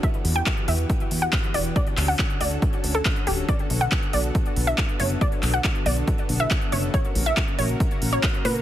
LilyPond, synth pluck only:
\new Staff \with { instrumentName = "Synth pluck" } { \time 4/4 \key b \minor \tempo 4 = 139 e''8. g''8. e''8 r8. fis''8. d''8 | d''8. fis''8. d''8 r8. a'8. g'8 | d''8. fis''8. d''8 r8. e''8. cis''8 | d''8. fis''8. d''8 r8. e''8. cis''8 |
cis''8. e''8. cis''8 r8. cis''8. b'8 | }